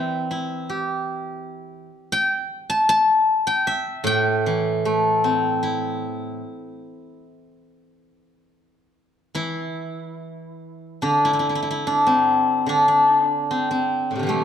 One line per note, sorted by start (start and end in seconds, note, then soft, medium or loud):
0.00 1.89 E3 medium
0.00 1.50 C4 soft
0.00 0.65 C5 medium
0.00 0.71 D5 medium
0.00 1.22 E5 medium
0.31 1.91 E4 soft
0.70 2.29 G4 soft
2.12 3.46 G5 loud
2.70 2.89 A5 loud
2.89 4.06 A5 loud
3.47 4.07 G5 loud
3.67 5.39 E5 medium
4.04 6.40 A2 medium
4.04 4.87 G5 loud
4.46 6.02 E3 medium
4.85 6.41 A3 medium
4.85 5.37 G#5 loud
5.24 6.81 C4 medium
5.37 8.47 A5 loud
5.63 7.22 E4 medium
9.35 11.85 E3 soft
9.35 11.24 E4 medium
11.02 12.65 D3 soft
11.02 11.86 D4 medium
11.25 11.33 E4 medium
11.33 11.39 E4 medium
11.39 11.49 E4 medium
11.49 11.55 E4 soft
11.55 11.62 E4 medium
11.63 11.70 E4 medium
11.71 14.32 E4 medium
11.87 12.69 D4 medium
12.07 13.50 C4 medium
12.66 14.18 D3 soft
12.66 12.88 D4 medium
12.88 14.44 D4 medium
13.51 13.70 C4 medium
13.71 14.44 C4 medium
14.11 14.33 A2 soft
14.16 14.44 C3 soft
14.16 14.44 D3 soft
14.23 14.44 E3 soft
14.23 14.44 G3 soft
14.29 14.44 A3 medium